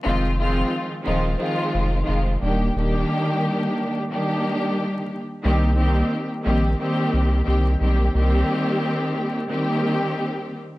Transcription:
X:1
M:4/4
L:1/8
Q:"Swing 16ths" 1/4=89
K:Cm
V:1 name="String section"
[E,F,A,CF] [E,F,A,CF] z [E,F,A,CF] [E,F,A,CF]2 [E,F,A,CF] [E,G,B,DG] | [E,G,B,DG]4 [E,G,B,DG]3 z | [E,G,B,CG] [E,G,B,CG] z [E,G,B,CG] [E,G,B,CG]2 [E,G,B,CG] [E,G,B,CG] | [E,G,B,CG]4 [E,G,B,CG]3 z |]
V:2 name="Sub bass" clef=bass
F,,,2 z E,,, z F,,, F,,, E,,, | E,,, z6 z | C,,2 z B,,, z C,, C,, =B,,, | C,, z6 z |]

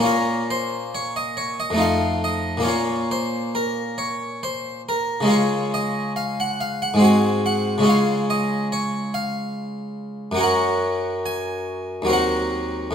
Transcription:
X:1
M:3/4
L:1/16
Q:1/4=70
K:Bbm
V:1 name="Harpsichord"
B2 c2 d e d e f2 e2 | d2 c2 B2 d2 c2 B2 | d2 e2 f g f g a2 g2 | f2 e2 d2 f6 |
g4 a4 g4 |]
V:2 name="Harpsichord"
[B,,B,DF]8 [F,,=A,EF]4 | [B,,B,DF]12 | [D,A,DF]8 [A,,A,CG]4 | [D,A,DF]12 |
[G,,G,DB]8 [E,,G,CB]4 |]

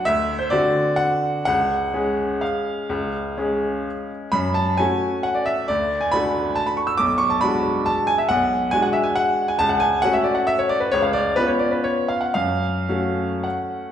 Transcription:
X:1
M:3/4
L:1/16
Q:1/4=132
K:F#m
V:1 name="Upright piano"
e3 =c d4 f4 | f8 ^e4- | ^e8- e2 z2 | b2 a2 g4 f d e2 |
d3 g b4 a b c' e' | d'2 c' a b4 a2 g e | f4 g f e g f3 g | a f g2 f e d f e c d B |
c ^e d2 B c d B c2 e f | ^e8 f4 |]
V:2 name="Upright piano"
D,,4 [D,=CF]8 | C,,4 [G,CG]8 | C,,4 [G,CG]8 | F,,4 [A,CF]8 |
D,,4 [A,DF]8 | B,,,4 [G,DF]8 | B,,,4 [G,DF]8 | C,,4 [A,CF]8 |
C,,4 [B,C^E]8 | F,,4 [A,CF]8 |]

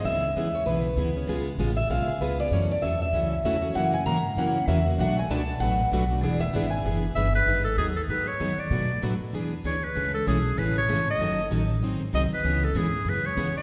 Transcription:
X:1
M:4/4
L:1/8
Q:"Swing" 1/4=194
K:Emix
V:1 name="Steel-string acoustic guitar"
e3 c B4- | B2 z e ^e G B d | c d e e2 z e2 | f g ^a2 f2 e2 |
f g a2 f2 z2 | d e f g2 z3 | [K:G#phr] z8 | z8 |
z8 | z8 | z8 |]
V:2 name="Clarinet"
z8 | z8 | z8 | z8 |
z8 | z6 e B- | [K:G#phr] B A G A B c2 =d- | =d2 z4 c B- |
B A G2 B c2 d- | d2 z4 d B- | B A G2 B c2 d |]
V:3 name="Steel-string acoustic guitar"
[C,G,B,EG] z [C,G,B,EG] z [C,G,B,EG] z [C,G,B,EG] z | [C,G,B,^EG] z [C,G,B,EG] z [C,G,B,EG] z [C,G,B,EG] z | [F,CEA] z [F,CEA] z [F,CEA] z [F,CEA] z | [F,CE^A] z [F,CEA] z [F,CEA] z [F,CEA] z |
[B,,F,A,DFB] z [B,,F,A,DFB] z [B,,F,A,DFB] z [B,,F,A,DFB] z | [E,B,DGB] z [E,B,DGB] z [E,B,DGB] z [E,B,DGB] z | [K:G#phr] [D,F,B,DG] z [D,F,B,DG] z [D,F,B,DG] z [D,F,B,DG] z | [B,,F,A,=DFB] z [B,,F,A,DFB] z [E,B,DGB] z [E,B,DGB] z |
[E,G,CEA] z [E,G,CEA] z [E,G,CEA] z [E,G,CEA] z | [D,F,CDA] z [D,F,CDA] z [D,F,^B,DG] z [D,F,B,DG] z | [C,G,B,EG] z [C,G,B,EG] z [C,G,B,EG] z [C,G,B,EG] z |]
V:4 name="Steel-string acoustic guitar"
[C,E,B,CG] z [C,E,B,CG] z [C,E,B,CG] z [C,E,B,CG] [B,CG] | [C,G,B,^EG] z [C,G,B,EG] z [C,G,B,EG] z [C,G,B,EG] [B,EG] | [C,E,A,CF] z [C,E,A,CF] z [C,E,A,CF] z [C,E,A,CF] [A,CF] | [C,E,^A,CF] z [C,E,A,CF] z [C,E,A,CF] z [C,E,A,CF] [A,CF] |
[B,,F,A,DF] z [B,,F,A,DF] z [B,,F,A,DF] z [B,,F,A,DF] [A,DF] | [E,B,DG] z [E,B,DG] z [E,B,DG] z [E,B,DG] [B,DG] | [K:G#phr] [D,F,B,DG] z [D,F,B,DG] z [D,F,B,DG] z [D,F,B,DG] z | [B,,F,A,=DF] z [B,,F,A,DF] z [E,B,DG] z [E,B,DG] z |
[C,E,A,CG] z [C,E,A,CG] z [C,E,A,CG] z [C,E,A,CG] z | [D,F,CDA] z [D,F,CDA] z [D,F,^B,DG] z [D,F,B,DG] z | [C,E,B,CG] z [C,E,B,CG] z [C,E,B,CG] z [C,E,B,CG] z |]
V:5 name="Upright bass" clef=bass
C,,2 E,,2 B,,,2 D,,2 | C,,2 A,,,2 B,,, z C,,2 | F,,2 E,,2 C,,2 E,,2 | F,,2 G,,2 F,,2 E,,2 |
B,,,2 C,,2 A,,,2 B,,,2 | E,,,2 G,,,2 F,,,2 =G,,,2 | [K:G#phr] G,,,2 D,,2 G,,2 F,, z | B,,2 A,, z E,,2 =D,,2 |
C,,2 B,,,2 A,,,2 G,,,2 | F,,,2 A,,,2 G,,,2 ^B,,, z | C,,2 G,,2 F,,2 E,, z |]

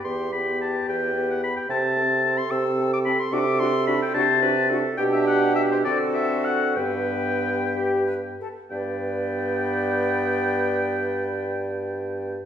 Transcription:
X:1
M:6/8
L:1/16
Q:3/8=68
K:G
V:1 name="Oboe"
c'2 b2 a2 g3 f b g | a4- a c' e'3 d' b c' | d'2 c'2 b g a4 z2 | g e f2 e c d2 e2 f2 |
g8- g2 z2 | g12- | g12 |]
V:2 name="Clarinet"
G6 B4 z2 | A12 | A6 c2 B2 A2 | G6 A6 |
B8- B z3 | B12- | B12 |]
V:3 name="Flute"
G2 G6 G4 | A2 A2 A2 A2 A2 A2 | F2 F2 F2 F2 F2 F2 | G6 F6 |
G6 G2 B2 A2 | d12- | d12 |]
V:4 name="French horn"
B,2 B,6 B,4 | C2 C2 C2 C2 C2 C2 | D2 D2 D2 D2 D2 D2 | D6 C6 |
B,8- B,2 z2 | B,12- | B,12 |]
V:5 name="Bassoon" clef=bass
E,,6 E,,6 | C,6 C,6 | C,6 C,6 | B,,6 D,6 |
G,,8- G,,2 z2 | G,,12- | G,,12 |]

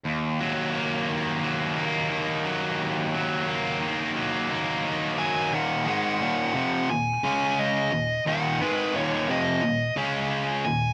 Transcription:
X:1
M:4/4
L:1/8
Q:1/4=88
K:Ebm
V:1 name="Lead electric guitar"
z8 | z6 z a | g g3 a2 e2 | g c d e2 z2 a |]
V:2 name="Distorted electric guitar" clef=bass
E,, G, B, E, B, E B, G, | E,, G, B, E, B, E B, G, | [E,,B,,E,] [A,,E,A,] [E,,B,,E,] [F,,=C,F,] [E,,B,,] [D,A,D]2 [E,,B,,] | [E,,B,,E,] [A,,E,A,] [E,,B,,E,] [F,,=C,F,] [E,,B,,] [D,A,D]2 [E,,B,,] |]
V:3 name="Distorted electric guitar" clef=bass
E,, G, B, E, G, B, E, G, | E,, G, B, E, G, B, E, G, | [E,,B,,E,] [A,,E,A,] [E,,B,,E,] [F,,=C,F,] [E,,B,,] [D,A,D]2 [E,,B,,] | [E,,B,,E,] [A,,E,A,] [E,,B,,E,] [F,,=C,F,] [E,,B,,] [D,A,D]2 [E,,B,,] |]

